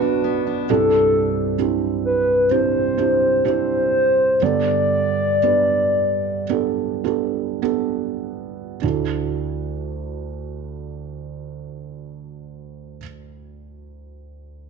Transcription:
0.00 0.65 B1 soft
0.00 0.65 F#2 soft
0.00 0.78 B2 medium
0.00 0.23 B3 soft
0.00 0.70 B3 medium
0.00 0.70 D4 medium
0.00 0.46 D4 soft
0.00 0.71 F#4 medium
0.00 0.78 F#4 soft
0.00 0.71 B4 medium
0.24 0.78 B3 soft
0.47 1.28 D4 soft
0.70 4.38 C2 soft
0.70 4.38 G2 soft
0.70 1.55 C4 medium
0.70 1.55 D4 medium
0.70 1.55 E4 medium
0.70 1.55 G4 medium
0.70 1.55 A4 loud
1.58 2.45 C4 soft
1.58 2.46 D4 soft
1.58 2.46 E4 soft
1.58 2.46 G4 medium
2.05 2.52 B4 medium
2.51 2.95 C4 soft
2.51 2.95 D4 soft
2.51 2.95 E4 soft
2.51 2.95 G4 medium
2.51 3.44 C5 medium
2.97 3.42 C4 soft
2.97 3.42 D4 soft
2.97 3.42 E4 soft
2.97 3.43 G4 medium
3.45 4.37 C4 soft
3.45 4.37 D4 soft
3.45 4.37 E4 soft
3.45 4.37 G4 medium
3.45 4.44 C5 medium
4.42 8.79 G2 soft
4.42 8.79 D3 soft
4.42 5.38 B3 medium
4.42 5.38 D4 medium
4.42 5.38 G4 medium
4.42 5.38 A4 medium
4.42 7.63 D5 loud
5.43 6.44 B3 soft
5.43 6.44 D4 soft
5.43 6.44 G4 soft
5.43 6.44 B4 soft
6.49 7.02 B3 medium
6.49 7.02 D4 soft
6.49 7.02 G4 medium
6.49 7.02 A4 medium
7.04 7.59 B3 soft
7.04 7.59 D4 soft
7.04 7.59 G4 soft
7.04 7.59 A4 medium
7.62 8.77 B3 medium
7.62 8.77 D4 soft
7.62 8.77 G4 soft
7.62 8.77 A4 medium
8.82 12.99 D2 soft
8.82 12.98 D4 soft
8.82 12.99 E4 soft
8.82 13.00 F#4 soft
8.82 13.01 A4 soft

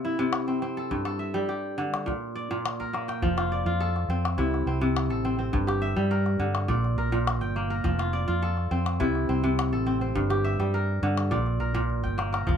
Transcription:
0.00 0.18 C3 medium
0.00 0.23 A#3 medium
0.00 0.47 C4 medium
0.00 0.11 F4 medium
0.00 0.15 G4 medium
0.05 1.61 E4 medium
0.19 0.96 C3 medium
0.33 calabash click medium
0.48 0.62 C4 medium
0.62 2.42 C4 medium
0.62 calabash click soft
0.77 1.05 A4 medium
0.91 2.11 G2 medium
0.91 calabash thump medium
0.91 calabash click soft
1.05 2.12 A4 medium
1.05 calabash click soft
1.19 2.23 E5 medium
1.34 1.83 G3 medium
1.49 2.90 G4 medium
1.78 2.11 D3 medium
1.78 calabash click soft
1.94 calabash click soft
2.06 2.49 A#2 medium
2.06 calabash thump medium
2.35 3.46 D5 medium
2.51 3.27 A#2 medium
2.51 calabash click soft
2.66 calabash click medium
2.80 3.86 A#4 medium
2.80 calabash thump soft
2.93 3.86 A#3 medium
2.93 calabash click soft
3.08 4.01 G5 medium
3.08 calabash click soft
3.22 3.62 F1 medium
3.22 4.43 F3 medium
3.22 calabash thump medium
3.22 calabash click soft
3.37 3.66 F4 medium
3.37 calabash click soft
3.52 4.63 D5 medium
3.66 4.05 F2 medium
3.66 4.44 F4 medium
3.80 5.10 A4 medium
3.80 calabash click soft
3.96 calabash click soft
4.08 4.35 F2 medium
4.08 4.67 C4 medium
4.25 calabash click soft
4.37 4.64 C2 loud
4.37 4.80 C3 medium
4.37 5.95 E4 medium
4.37 calabash thump medium
4.37 calabash click soft
4.54 calabash click soft
4.66 5.10 C2 medium
4.66 5.24 C4 medium
4.81 5.58 C3 medium
4.97 calabash click medium
5.10 5.49 A1 medium
5.10 6.17 A4 medium
5.25 5.38 C4 medium
5.39 7.19 C4 medium
5.53 5.93 G1 medium
5.53 6.74 G2 medium
5.53 calabash thump medium
5.53 calabash click soft
5.67 7.08 G4 medium
5.67 calabash click soft
5.82 6.85 E5 medium
5.96 6.36 G2 medium
5.96 6.45 G3 medium
6.11 6.97 A#4 medium
6.11 calabash click soft
6.26 calabash click soft
6.40 6.66 G2 medium
6.40 6.74 D3 medium
6.55 calabash click soft
6.68 6.95 A#1 loud
6.68 7.11 A#2 medium
6.68 7.79 D5 medium
6.68 calabash thump medium
6.68 calabash click soft
6.84 calabash click soft
6.97 7.41 A#1 medium
6.97 7.70 A#4 medium
7.12 7.90 A#2 medium
7.27 calabash click medium
7.41 7.81 G1 medium
7.41 8.34 G5 medium
7.56 8.48 A#3 medium
7.56 calabash click soft
7.70 8.48 A#4 medium
7.84 8.24 F1 medium
7.84 9.05 F3 medium
7.84 calabash thump medium
7.84 calabash click soft
7.99 8.27 F4 medium
7.99 calabash click medium
8.13 9.24 D5 medium
8.28 8.67 F2 medium
8.28 9.06 F4 medium
8.42 9.72 A4 medium
8.42 calabash click soft
8.57 calabash click soft
8.71 8.97 F2 medium
8.71 9.29 C4 medium
8.86 calabash click medium
9.00 9.26 C2 loud
9.00 9.42 C3 medium
9.00 10.56 E4 medium
9.00 calabash thump medium
9.00 calabash click soft
9.15 calabash click soft
9.29 9.73 C2 medium
9.29 9.86 C4 medium
9.44 10.21 C3 medium
9.59 calabash click medium
9.73 10.12 A1 medium
9.73 10.80 A4 medium
9.86 10.01 C4 medium
9.86 calabash click soft
10.01 11.81 C4 medium
10.15 10.55 G1 medium
10.15 11.37 G2 medium
10.15 calabash thump medium
10.30 11.71 G4 medium
10.30 calabash click soft
10.44 11.48 E5 medium
10.44 calabash click soft
10.59 10.99 G2 medium
10.59 11.08 G3 medium
10.59 calabash click soft
10.74 11.60 A#4 medium
11.02 11.29 G2 medium
11.02 11.37 D3 medium
11.02 calabash click soft
11.18 calabash click medium
11.31 11.57 A#1 medium
11.31 11.73 A#2 medium
11.31 12.42 D5 medium
11.31 calabash thump medium
11.31 calabash click soft
11.46 calabash click soft
11.60 12.03 A#1 medium
11.60 12.32 A#4 medium
11.74 12.52 A#2 medium
11.74 calabash thump soft
11.90 calabash thump soft
12.03 12.43 G1 medium
12.03 12.57 G5 medium
12.03 calabash thump soft
12.18 12.57 A#3 medium
12.18 calabash click soft
12.32 12.57 A#4 medium
12.32 calabash click soft
12.47 12.57 F1 medium
12.47 12.57 F3 medium
12.47 calabash thump medium
12.47 calabash click soft

